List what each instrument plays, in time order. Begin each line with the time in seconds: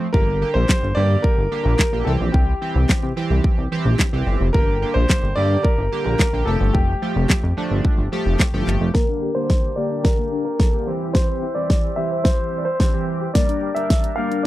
0.13 analog synth bass G1, analog polysynth D3 A#3 G4, grand piano A#4, kick
0.41 analog polysynth D3 A#3 G4
0.54 analog synth bass A#1, grand piano C5
0.69 kick, snare, clap
0.83 analog synth bass G1
0.95 analog synth bass G2, analog polysynth D3 A#3 G4, grand piano D5
1.22 grand piano A#4, kick
1.38 analog synth bass G1
1.51 analog polysynth D3 A#3 G4
1.64 analog synth bass A#1, grand piano A#4
1.79 kick, snare, clap
1.93 analog synth bass A#1, analog polysynth D3 A#3 G4
2.05 analog synth bass C2, analog polysynth E3 C4 G4, grand piano A4
2.20 analog synth bass A#1
2.32 analog synth bass C2, grand piano G4, kick
2.61 analog polysynth E3 C4 G4
2.75 analog synth bass C2
2.89 kick, snare, clap
3.03 analog synth bass C3
3.16 analog polysynth E3 C4 G4
3.31 analog synth bass C2
3.44 kick
3.58 analog synth bass C2
3.72 analog polysynth E3 C4 G4
3.85 analog synth bass A#1
3.99 kick, snare, clap
4.13 analog synth bass C2, analog polysynth E3 C4 G4
4.27 analog synth bass G1
4.41 analog synth bass F1
4.53 analog synth bass G1, analog polysynth D3 A#3 G4, grand piano A#4, kick
4.82 analog polysynth D3 A#3 G4
4.94 analog synth bass A#1, grand piano C5
5.10 kick, snare, clap
5.23 analog synth bass G1
5.36 analog synth bass G2, analog polysynth D3 A#3 G4, grand piano D5
5.63 grand piano A#4, kick
5.78 analog synth bass G1
5.92 analog polysynth D3 A#3 G4
6.04 analog synth bass A#1, grand piano A#4
6.19 kick, snare, clap
6.33 analog synth bass A#1, analog polysynth D3 A#3 G4
6.46 analog synth bass F1, analog polysynth F3 A3 G4, grand piano A4
6.61 analog synth bass G1
6.73 analog synth bass F1, grand piano G4, kick
7.02 analog polysynth F3 A3 G4
7.16 analog synth bass F1
7.30 kick, snare, clap
7.44 analog synth bass F2
7.57 analog polysynth F3 A3 D4
7.71 analog synth bass G1
7.85 kick
7.98 analog synth bass G1
8.12 analog polysynth F3 A3 G4
8.26 analog synth bass F1
8.40 kick, snare, clap
8.53 analog synth bass G1, analog polysynth F3 A3 G4
8.67 analog synth bass G1, clap
8.81 analog synth bass F1
8.94 analog polysynth D3 A#3 G4, synth pluck A#3, grand piano A#4, flute section A#4 D5 G5 D6 G6, kick, snare
9.09 synth pluck D4
9.22 synth pluck G4
9.35 analog polysynth D3 A#3 G4, grand piano C5
9.50 kick, snare
9.76 analog polysynth D3 A#3 G4, synth pluck A#3, grand piano D5
9.91 synth pluck D4
10.04 synth pluck G4, grand piano A#4, kick, snare
10.19 synth pluck A#3
10.32 synth pluck D4
10.45 synth pluck G4, grand piano A#4
10.60 analog polysynth D3 A#3 A4, kick, snare
10.73 analog polysynth D3 A#3 G4
10.87 analog polysynth E3 C4 G4, flute section C5 E5 E6 G6
11.01 synth pluck E4
11.13 synth pluck G4, grand piano C5, kick, snare
11.29 synth pluck C5
11.43 synth pluck E4
11.55 analog polysynth E3 C4 G4, grand piano D5
11.70 kick, snare
11.96 analog polysynth E3 C4 G4, grand piano E5
12.11 synth pluck C5
12.24 grand piano C5, kick, snare
12.58 grand piano D5
12.65 grand piano C5
12.80 analog polysynth E3 C4 D4, synth pluck G4, kick, snare
12.93 analog polysynth E3 C4 G4, synth pluck C5
13.21 synth pluck G4
13.34 analog polysynth G3 D4 A#4, synth pluck A#3, flute section A#4 D5 G5 D6, grand piano D5, kick, snare, closed hi-hat
13.49 synth pluck D4, closed hi-hat
13.63 synth pluck G4
13.75 analog polysynth G3 D4 A#4, grand piano E5, closed hi-hat
13.90 kick, snare, closed hi-hat
14.04 closed hi-hat
14.16 analog polysynth G3 D4 A#4, synth pluck A#3, grand piano F5
14.31 synth pluck D4, closed hi-hat
14.43 grand piano D5